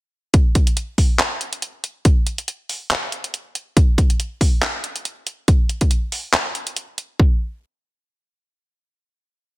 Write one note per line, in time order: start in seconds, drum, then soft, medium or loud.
0.34 kick loud
0.34 closed hi-hat medium
0.55 kick loud
0.55 closed hi-hat medium
0.67 closed hi-hat medium
0.77 closed hi-hat medium
0.98 kick medium
0.98 open hi-hat medium
1.19 clap loud
1.19 closed hi-hat medium
1.41 closed hi-hat medium
1.53 closed hi-hat medium
1.62 closed hi-hat medium
1.84 closed hi-hat medium
2.05 kick loud
2.05 closed hi-hat medium
2.27 closed hi-hat medium
2.38 closed hi-hat medium
2.48 closed hi-hat medium
2.69 open hi-hat medium
2.91 clap loud
2.91 closed hi-hat medium
3.12 closed hi-hat medium
3.24 closed hi-hat medium
3.34 closed hi-hat medium
3.55 closed hi-hat medium
3.77 kick loud
3.77 closed hi-hat medium
3.98 kick loud
3.98 closed hi-hat medium
4.10 closed hi-hat medium
4.20 closed hi-hat medium
4.41 kick medium
4.41 open hi-hat medium
4.62 clap loud
4.62 closed hi-hat medium
4.84 closed hi-hat medium
4.96 closed hi-hat medium
5.05 closed hi-hat medium
5.27 closed hi-hat medium
5.48 kick loud
5.48 closed hi-hat medium
5.69 closed hi-hat medium
5.81 kick medium
5.81 closed hi-hat medium
5.91 closed hi-hat medium
6.12 open hi-hat medium
6.34 clap loud
6.34 closed hi-hat medium
6.55 closed hi-hat medium
6.67 closed hi-hat medium
6.76 closed hi-hat medium
6.98 closed hi-hat medium
7.20 kick loud